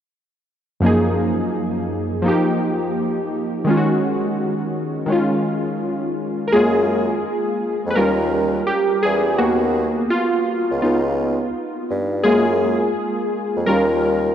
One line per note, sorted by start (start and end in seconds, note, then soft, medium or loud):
0.80 2.21 F#2 medium
0.80 2.21 F3 medium
0.80 2.23 A#3 medium
0.85 2.23 D#4 medium
0.85 2.24 G#4 medium
2.22 3.64 F3 medium
2.22 3.65 A#3 medium
2.22 3.66 D#4 medium
2.28 3.67 G4 medium
3.64 5.05 D#3 medium
3.64 5.07 G#3 medium
3.69 5.08 C#4 medium
3.69 3.78 F4 medium
3.77 5.13 F#4 medium
5.06 6.48 D#3 medium
5.06 6.49 G#3 medium
5.06 6.50 C#4 medium
5.12 6.51 F4 medium
6.47 6.53 A#4 medium
6.52 7.18 F#2 medium
6.52 7.92 G#3 medium
6.52 7.92 A#3 medium
6.52 7.93 F4 medium
6.52 7.95 G#4 medium
7.86 7.96 F2 medium
7.90 7.96 B4 medium
7.95 8.61 D#2 loud
7.95 8.48 G3 soft
7.95 8.48 C#4 soft
7.95 8.48 F4 medium
7.95 8.63 A#4 medium
8.67 9.04 G4 medium
9.03 9.36 E2 medium
9.03 9.40 G#4 medium
9.38 10.04 D#2 medium
9.38 9.91 A#3 medium
9.38 9.91 B3 medium
9.38 9.40 F#4 medium
9.38 9.91 F#4 medium
10.10 10.81 F4 medium
10.71 10.82 C#2 medium
10.82 11.46 C#2 loud
10.82 12.21 B3 soft
10.82 12.21 D#4 soft
10.82 12.22 F4 medium
11.90 12.22 G2 medium
12.23 12.89 F#2 loud
12.23 13.28 G#3 medium
12.23 13.28 A#3 medium
12.23 13.29 F4 medium
12.23 13.63 G#4 loud
13.56 13.67 F2 medium
13.66 14.32 D#2 loud
13.66 14.19 G3 medium
13.66 14.19 C#4 soft
13.66 14.20 F4 medium
13.66 14.35 A#4 medium